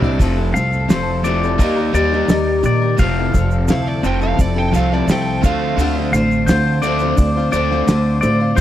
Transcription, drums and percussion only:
0, 0, Header, 1, 2, 480
1, 0, Start_track
1, 0, Tempo, 698487
1, 133, Time_signature, 4, 2, 24, 8
1, 5916, End_track
2, 0, Start_track
2, 0, Title_t, "Drums"
2, 15, Note_on_c, 9, 43, 92
2, 84, Note_off_c, 9, 43, 0
2, 134, Note_on_c, 9, 46, 58
2, 136, Note_on_c, 9, 36, 101
2, 142, Note_on_c, 9, 82, 86
2, 202, Note_off_c, 9, 46, 0
2, 205, Note_off_c, 9, 36, 0
2, 210, Note_off_c, 9, 82, 0
2, 385, Note_on_c, 9, 82, 65
2, 454, Note_off_c, 9, 82, 0
2, 499, Note_on_c, 9, 82, 24
2, 568, Note_off_c, 9, 82, 0
2, 614, Note_on_c, 9, 46, 55
2, 618, Note_on_c, 9, 82, 83
2, 621, Note_on_c, 9, 38, 100
2, 683, Note_off_c, 9, 46, 0
2, 686, Note_off_c, 9, 82, 0
2, 689, Note_off_c, 9, 38, 0
2, 855, Note_on_c, 9, 82, 69
2, 923, Note_off_c, 9, 82, 0
2, 986, Note_on_c, 9, 82, 25
2, 1055, Note_off_c, 9, 82, 0
2, 1093, Note_on_c, 9, 46, 51
2, 1094, Note_on_c, 9, 36, 101
2, 1098, Note_on_c, 9, 82, 85
2, 1162, Note_off_c, 9, 46, 0
2, 1163, Note_off_c, 9, 36, 0
2, 1167, Note_off_c, 9, 82, 0
2, 1338, Note_on_c, 9, 82, 68
2, 1407, Note_off_c, 9, 82, 0
2, 1463, Note_on_c, 9, 38, 32
2, 1532, Note_off_c, 9, 38, 0
2, 1573, Note_on_c, 9, 82, 94
2, 1575, Note_on_c, 9, 46, 52
2, 1581, Note_on_c, 9, 38, 101
2, 1642, Note_off_c, 9, 82, 0
2, 1643, Note_off_c, 9, 46, 0
2, 1650, Note_off_c, 9, 38, 0
2, 1811, Note_on_c, 9, 82, 70
2, 1880, Note_off_c, 9, 82, 0
2, 2051, Note_on_c, 9, 82, 79
2, 2057, Note_on_c, 9, 36, 99
2, 2060, Note_on_c, 9, 46, 51
2, 2119, Note_off_c, 9, 82, 0
2, 2125, Note_off_c, 9, 36, 0
2, 2129, Note_off_c, 9, 46, 0
2, 2296, Note_on_c, 9, 82, 66
2, 2297, Note_on_c, 9, 36, 73
2, 2365, Note_off_c, 9, 36, 0
2, 2365, Note_off_c, 9, 82, 0
2, 2411, Note_on_c, 9, 82, 25
2, 2480, Note_off_c, 9, 82, 0
2, 2530, Note_on_c, 9, 82, 89
2, 2539, Note_on_c, 9, 46, 53
2, 2545, Note_on_c, 9, 38, 102
2, 2598, Note_off_c, 9, 82, 0
2, 2608, Note_off_c, 9, 46, 0
2, 2614, Note_off_c, 9, 38, 0
2, 2776, Note_on_c, 9, 82, 65
2, 2844, Note_off_c, 9, 82, 0
2, 2896, Note_on_c, 9, 82, 25
2, 2965, Note_off_c, 9, 82, 0
2, 3016, Note_on_c, 9, 36, 103
2, 3016, Note_on_c, 9, 46, 52
2, 3018, Note_on_c, 9, 82, 90
2, 3084, Note_off_c, 9, 46, 0
2, 3085, Note_off_c, 9, 36, 0
2, 3086, Note_off_c, 9, 82, 0
2, 3257, Note_on_c, 9, 82, 69
2, 3326, Note_off_c, 9, 82, 0
2, 3384, Note_on_c, 9, 38, 33
2, 3453, Note_off_c, 9, 38, 0
2, 3494, Note_on_c, 9, 82, 90
2, 3496, Note_on_c, 9, 46, 60
2, 3502, Note_on_c, 9, 38, 109
2, 3563, Note_off_c, 9, 82, 0
2, 3565, Note_off_c, 9, 46, 0
2, 3571, Note_off_c, 9, 38, 0
2, 3736, Note_on_c, 9, 36, 102
2, 3736, Note_on_c, 9, 82, 73
2, 3805, Note_off_c, 9, 36, 0
2, 3805, Note_off_c, 9, 82, 0
2, 3978, Note_on_c, 9, 46, 60
2, 3978, Note_on_c, 9, 82, 83
2, 4046, Note_off_c, 9, 46, 0
2, 4046, Note_off_c, 9, 82, 0
2, 4217, Note_on_c, 9, 82, 71
2, 4286, Note_off_c, 9, 82, 0
2, 4339, Note_on_c, 9, 82, 25
2, 4408, Note_off_c, 9, 82, 0
2, 4452, Note_on_c, 9, 82, 85
2, 4455, Note_on_c, 9, 46, 58
2, 4462, Note_on_c, 9, 38, 104
2, 4521, Note_off_c, 9, 82, 0
2, 4524, Note_off_c, 9, 46, 0
2, 4530, Note_off_c, 9, 38, 0
2, 4691, Note_on_c, 9, 82, 66
2, 4760, Note_off_c, 9, 82, 0
2, 4804, Note_on_c, 9, 82, 26
2, 4873, Note_off_c, 9, 82, 0
2, 4931, Note_on_c, 9, 82, 92
2, 4933, Note_on_c, 9, 46, 56
2, 4936, Note_on_c, 9, 36, 101
2, 5000, Note_off_c, 9, 82, 0
2, 5002, Note_off_c, 9, 46, 0
2, 5005, Note_off_c, 9, 36, 0
2, 5174, Note_on_c, 9, 82, 74
2, 5242, Note_off_c, 9, 82, 0
2, 5301, Note_on_c, 9, 38, 34
2, 5370, Note_off_c, 9, 38, 0
2, 5413, Note_on_c, 9, 46, 55
2, 5415, Note_on_c, 9, 82, 92
2, 5419, Note_on_c, 9, 38, 103
2, 5482, Note_off_c, 9, 46, 0
2, 5484, Note_off_c, 9, 82, 0
2, 5488, Note_off_c, 9, 38, 0
2, 5652, Note_on_c, 9, 82, 71
2, 5721, Note_off_c, 9, 82, 0
2, 5893, Note_on_c, 9, 82, 84
2, 5895, Note_on_c, 9, 36, 101
2, 5895, Note_on_c, 9, 46, 52
2, 5916, Note_off_c, 9, 36, 0
2, 5916, Note_off_c, 9, 46, 0
2, 5916, Note_off_c, 9, 82, 0
2, 5916, End_track
0, 0, End_of_file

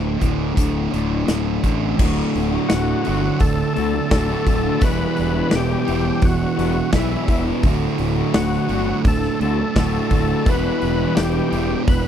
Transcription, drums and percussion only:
0, 0, Header, 1, 2, 480
1, 0, Start_track
1, 0, Key_signature, 2, "major"
1, 0, Tempo, 706714
1, 1352, Time_signature, 4, 2, 24, 8
1, 8203, End_track
2, 0, Start_track
2, 0, Title_t, "Drums"
2, 145, Note_on_c, 9, 42, 61
2, 147, Note_on_c, 9, 36, 80
2, 213, Note_off_c, 9, 42, 0
2, 215, Note_off_c, 9, 36, 0
2, 389, Note_on_c, 9, 36, 107
2, 389, Note_on_c, 9, 42, 87
2, 457, Note_off_c, 9, 36, 0
2, 457, Note_off_c, 9, 42, 0
2, 637, Note_on_c, 9, 42, 61
2, 705, Note_off_c, 9, 42, 0
2, 871, Note_on_c, 9, 42, 81
2, 872, Note_on_c, 9, 38, 107
2, 939, Note_off_c, 9, 42, 0
2, 940, Note_off_c, 9, 38, 0
2, 1112, Note_on_c, 9, 36, 79
2, 1112, Note_on_c, 9, 42, 66
2, 1179, Note_off_c, 9, 36, 0
2, 1180, Note_off_c, 9, 42, 0
2, 1352, Note_on_c, 9, 49, 118
2, 1354, Note_on_c, 9, 36, 112
2, 1420, Note_off_c, 9, 49, 0
2, 1422, Note_off_c, 9, 36, 0
2, 1599, Note_on_c, 9, 46, 56
2, 1667, Note_off_c, 9, 46, 0
2, 1831, Note_on_c, 9, 46, 82
2, 1832, Note_on_c, 9, 38, 115
2, 1899, Note_off_c, 9, 46, 0
2, 1900, Note_off_c, 9, 38, 0
2, 2070, Note_on_c, 9, 46, 60
2, 2138, Note_off_c, 9, 46, 0
2, 2308, Note_on_c, 9, 46, 83
2, 2313, Note_on_c, 9, 36, 108
2, 2376, Note_off_c, 9, 46, 0
2, 2381, Note_off_c, 9, 36, 0
2, 2557, Note_on_c, 9, 46, 63
2, 2625, Note_off_c, 9, 46, 0
2, 2793, Note_on_c, 9, 36, 86
2, 2793, Note_on_c, 9, 46, 90
2, 2794, Note_on_c, 9, 38, 125
2, 2861, Note_off_c, 9, 36, 0
2, 2861, Note_off_c, 9, 38, 0
2, 2861, Note_off_c, 9, 46, 0
2, 3033, Note_on_c, 9, 36, 95
2, 3038, Note_on_c, 9, 46, 73
2, 3101, Note_off_c, 9, 36, 0
2, 3106, Note_off_c, 9, 46, 0
2, 3269, Note_on_c, 9, 46, 95
2, 3272, Note_on_c, 9, 36, 110
2, 3337, Note_off_c, 9, 46, 0
2, 3340, Note_off_c, 9, 36, 0
2, 3510, Note_on_c, 9, 46, 60
2, 3577, Note_off_c, 9, 46, 0
2, 3743, Note_on_c, 9, 46, 78
2, 3744, Note_on_c, 9, 38, 109
2, 3811, Note_off_c, 9, 46, 0
2, 3812, Note_off_c, 9, 38, 0
2, 3993, Note_on_c, 9, 46, 67
2, 4060, Note_off_c, 9, 46, 0
2, 4223, Note_on_c, 9, 46, 79
2, 4227, Note_on_c, 9, 36, 114
2, 4291, Note_off_c, 9, 46, 0
2, 4295, Note_off_c, 9, 36, 0
2, 4476, Note_on_c, 9, 46, 65
2, 4544, Note_off_c, 9, 46, 0
2, 4704, Note_on_c, 9, 46, 85
2, 4705, Note_on_c, 9, 38, 119
2, 4707, Note_on_c, 9, 36, 79
2, 4772, Note_off_c, 9, 46, 0
2, 4773, Note_off_c, 9, 38, 0
2, 4775, Note_off_c, 9, 36, 0
2, 4945, Note_on_c, 9, 46, 70
2, 4946, Note_on_c, 9, 36, 96
2, 5013, Note_off_c, 9, 46, 0
2, 5014, Note_off_c, 9, 36, 0
2, 5185, Note_on_c, 9, 36, 109
2, 5185, Note_on_c, 9, 46, 84
2, 5253, Note_off_c, 9, 36, 0
2, 5253, Note_off_c, 9, 46, 0
2, 5423, Note_on_c, 9, 46, 57
2, 5491, Note_off_c, 9, 46, 0
2, 5666, Note_on_c, 9, 38, 125
2, 5666, Note_on_c, 9, 46, 79
2, 5734, Note_off_c, 9, 38, 0
2, 5734, Note_off_c, 9, 46, 0
2, 5791, Note_on_c, 9, 38, 35
2, 5859, Note_off_c, 9, 38, 0
2, 5904, Note_on_c, 9, 46, 62
2, 5972, Note_off_c, 9, 46, 0
2, 6146, Note_on_c, 9, 36, 109
2, 6146, Note_on_c, 9, 46, 73
2, 6214, Note_off_c, 9, 36, 0
2, 6214, Note_off_c, 9, 46, 0
2, 6270, Note_on_c, 9, 38, 29
2, 6338, Note_off_c, 9, 38, 0
2, 6392, Note_on_c, 9, 46, 55
2, 6460, Note_off_c, 9, 46, 0
2, 6627, Note_on_c, 9, 36, 77
2, 6630, Note_on_c, 9, 46, 83
2, 6631, Note_on_c, 9, 38, 114
2, 6695, Note_off_c, 9, 36, 0
2, 6698, Note_off_c, 9, 46, 0
2, 6699, Note_off_c, 9, 38, 0
2, 6865, Note_on_c, 9, 46, 71
2, 6866, Note_on_c, 9, 36, 97
2, 6933, Note_off_c, 9, 46, 0
2, 6934, Note_off_c, 9, 36, 0
2, 7107, Note_on_c, 9, 36, 113
2, 7107, Note_on_c, 9, 46, 83
2, 7175, Note_off_c, 9, 36, 0
2, 7175, Note_off_c, 9, 46, 0
2, 7347, Note_on_c, 9, 46, 58
2, 7415, Note_off_c, 9, 46, 0
2, 7585, Note_on_c, 9, 46, 88
2, 7586, Note_on_c, 9, 38, 104
2, 7653, Note_off_c, 9, 46, 0
2, 7654, Note_off_c, 9, 38, 0
2, 7828, Note_on_c, 9, 46, 68
2, 7896, Note_off_c, 9, 46, 0
2, 8067, Note_on_c, 9, 36, 121
2, 8067, Note_on_c, 9, 46, 81
2, 8134, Note_off_c, 9, 46, 0
2, 8135, Note_off_c, 9, 36, 0
2, 8203, End_track
0, 0, End_of_file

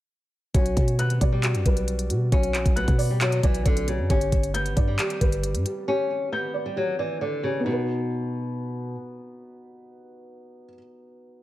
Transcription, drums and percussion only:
0, 0, Header, 1, 2, 480
1, 0, Start_track
1, 0, Key_signature, 2, "minor"
1, 0, Tempo, 444444
1, 590, Time_signature, 4, 2, 24, 8
1, 12342, End_track
2, 0, Start_track
2, 0, Title_t, "Drums"
2, 589, Note_on_c, 9, 36, 123
2, 589, Note_on_c, 9, 42, 75
2, 697, Note_off_c, 9, 36, 0
2, 697, Note_off_c, 9, 42, 0
2, 709, Note_on_c, 9, 42, 63
2, 817, Note_off_c, 9, 42, 0
2, 829, Note_on_c, 9, 36, 94
2, 829, Note_on_c, 9, 42, 73
2, 937, Note_off_c, 9, 36, 0
2, 937, Note_off_c, 9, 42, 0
2, 949, Note_on_c, 9, 42, 61
2, 1057, Note_off_c, 9, 42, 0
2, 1069, Note_on_c, 9, 42, 81
2, 1177, Note_off_c, 9, 42, 0
2, 1189, Note_on_c, 9, 42, 54
2, 1297, Note_off_c, 9, 42, 0
2, 1309, Note_on_c, 9, 36, 97
2, 1310, Note_on_c, 9, 42, 83
2, 1417, Note_off_c, 9, 36, 0
2, 1418, Note_off_c, 9, 42, 0
2, 1549, Note_on_c, 9, 39, 119
2, 1549, Note_on_c, 9, 42, 84
2, 1657, Note_off_c, 9, 39, 0
2, 1657, Note_off_c, 9, 42, 0
2, 1669, Note_on_c, 9, 42, 52
2, 1777, Note_off_c, 9, 42, 0
2, 1789, Note_on_c, 9, 36, 99
2, 1789, Note_on_c, 9, 42, 93
2, 1897, Note_off_c, 9, 36, 0
2, 1897, Note_off_c, 9, 42, 0
2, 1909, Note_on_c, 9, 42, 62
2, 2017, Note_off_c, 9, 42, 0
2, 2028, Note_on_c, 9, 42, 82
2, 2136, Note_off_c, 9, 42, 0
2, 2148, Note_on_c, 9, 42, 71
2, 2256, Note_off_c, 9, 42, 0
2, 2269, Note_on_c, 9, 42, 85
2, 2377, Note_off_c, 9, 42, 0
2, 2508, Note_on_c, 9, 42, 78
2, 2509, Note_on_c, 9, 36, 122
2, 2616, Note_off_c, 9, 42, 0
2, 2617, Note_off_c, 9, 36, 0
2, 2628, Note_on_c, 9, 42, 60
2, 2736, Note_off_c, 9, 42, 0
2, 2748, Note_on_c, 9, 42, 72
2, 2749, Note_on_c, 9, 39, 88
2, 2856, Note_off_c, 9, 42, 0
2, 2857, Note_off_c, 9, 39, 0
2, 2868, Note_on_c, 9, 36, 92
2, 2869, Note_on_c, 9, 42, 63
2, 2976, Note_off_c, 9, 36, 0
2, 2977, Note_off_c, 9, 42, 0
2, 2988, Note_on_c, 9, 42, 78
2, 3096, Note_off_c, 9, 42, 0
2, 3108, Note_on_c, 9, 42, 53
2, 3109, Note_on_c, 9, 36, 96
2, 3216, Note_off_c, 9, 42, 0
2, 3217, Note_off_c, 9, 36, 0
2, 3228, Note_on_c, 9, 46, 85
2, 3336, Note_off_c, 9, 46, 0
2, 3468, Note_on_c, 9, 39, 116
2, 3469, Note_on_c, 9, 42, 85
2, 3576, Note_off_c, 9, 39, 0
2, 3577, Note_off_c, 9, 42, 0
2, 3589, Note_on_c, 9, 42, 52
2, 3697, Note_off_c, 9, 42, 0
2, 3709, Note_on_c, 9, 36, 98
2, 3709, Note_on_c, 9, 42, 94
2, 3817, Note_off_c, 9, 36, 0
2, 3817, Note_off_c, 9, 42, 0
2, 3829, Note_on_c, 9, 42, 59
2, 3937, Note_off_c, 9, 42, 0
2, 3948, Note_on_c, 9, 42, 83
2, 3949, Note_on_c, 9, 36, 97
2, 4056, Note_off_c, 9, 42, 0
2, 4057, Note_off_c, 9, 36, 0
2, 4068, Note_on_c, 9, 42, 71
2, 4176, Note_off_c, 9, 42, 0
2, 4188, Note_on_c, 9, 42, 86
2, 4296, Note_off_c, 9, 42, 0
2, 4428, Note_on_c, 9, 42, 76
2, 4429, Note_on_c, 9, 36, 119
2, 4536, Note_off_c, 9, 42, 0
2, 4537, Note_off_c, 9, 36, 0
2, 4549, Note_on_c, 9, 42, 59
2, 4657, Note_off_c, 9, 42, 0
2, 4669, Note_on_c, 9, 36, 92
2, 4669, Note_on_c, 9, 42, 74
2, 4777, Note_off_c, 9, 36, 0
2, 4777, Note_off_c, 9, 42, 0
2, 4789, Note_on_c, 9, 42, 62
2, 4897, Note_off_c, 9, 42, 0
2, 4909, Note_on_c, 9, 42, 83
2, 5017, Note_off_c, 9, 42, 0
2, 5029, Note_on_c, 9, 42, 54
2, 5137, Note_off_c, 9, 42, 0
2, 5148, Note_on_c, 9, 36, 99
2, 5149, Note_on_c, 9, 42, 85
2, 5256, Note_off_c, 9, 36, 0
2, 5257, Note_off_c, 9, 42, 0
2, 5388, Note_on_c, 9, 39, 116
2, 5389, Note_on_c, 9, 42, 86
2, 5496, Note_off_c, 9, 39, 0
2, 5497, Note_off_c, 9, 42, 0
2, 5510, Note_on_c, 9, 42, 52
2, 5618, Note_off_c, 9, 42, 0
2, 5629, Note_on_c, 9, 36, 97
2, 5629, Note_on_c, 9, 42, 99
2, 5737, Note_off_c, 9, 36, 0
2, 5737, Note_off_c, 9, 42, 0
2, 5750, Note_on_c, 9, 42, 60
2, 5858, Note_off_c, 9, 42, 0
2, 5869, Note_on_c, 9, 42, 81
2, 5977, Note_off_c, 9, 42, 0
2, 5990, Note_on_c, 9, 42, 70
2, 6098, Note_off_c, 9, 42, 0
2, 6110, Note_on_c, 9, 42, 85
2, 6218, Note_off_c, 9, 42, 0
2, 12342, End_track
0, 0, End_of_file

